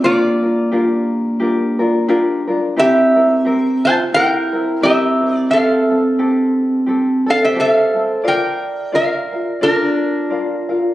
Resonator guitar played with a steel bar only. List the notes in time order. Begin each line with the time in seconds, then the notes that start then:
0.04 F4 D5
2.79 G4 E5
3.85 C5 A5
4.14 A#4 G5
4.83 G4 E5
5.35 D5
5.51 A4 F5
7.30 A4 F5
7.44 G4 E5
7.60 A4 F5
8.28 A#4 G5
8.95 A#4 F5
9.63 D4 A#4